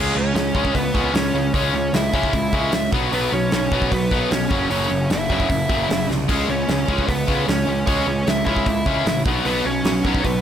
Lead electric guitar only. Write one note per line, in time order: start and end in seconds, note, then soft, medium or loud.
0.00 0.15 G#3 medium
0.00 0.15 G#4 loud
0.16 0.71 C#4 medium
0.16 0.75 C#5 medium
0.75 1.12 B3 medium
0.75 1.14 B4 medium
1.14 1.51 C#4 medium
1.14 1.51 C#5 medium
1.54 1.91 C#4 medium
1.54 1.95 C#5 loud
1.94 2.12 E4 medium
1.94 2.14 E5 loud
2.15 2.89 E4 medium
2.15 2.89 E5 medium
3.14 3.31 B3 medium
3.14 3.33 B4 loud
3.33 3.88 C#4 medium
3.33 3.92 C#5 loud
3.92 4.28 B3 medium
3.92 4.32 B4 medium
4.32 4.68 C#4 medium
4.32 4.68 C#5 medium
4.71 5.08 C#4 medium
4.71 5.07 C#5 loud
5.13 5.30 E4 medium
5.13 5.31 E5 medium
5.33 6.06 E4 medium
5.33 6.06 E5 medium
6.31 6.49 G#3 medium
6.31 6.50 G#4 medium
6.50 7.04 C#4 medium
6.50 7.07 C#5 medium
7.08 7.44 B3 medium
7.08 7.44 B4 medium
7.49 7.85 C#4 medium
7.49 7.86 C#5 medium
7.87 8.24 C#4 medium
7.87 8.27 C#5 loud
8.28 8.45 E4 medium
8.28 8.44 E5 loud
8.46 9.21 E4 medium
8.46 9.21 E5 medium
9.46 9.64 B3 medium
9.46 9.66 B4 loud
9.65 10.20 C#4 medium
9.65 10.24 C#5 medium
10.25 10.41 B3 medium
10.25 10.41 B4 medium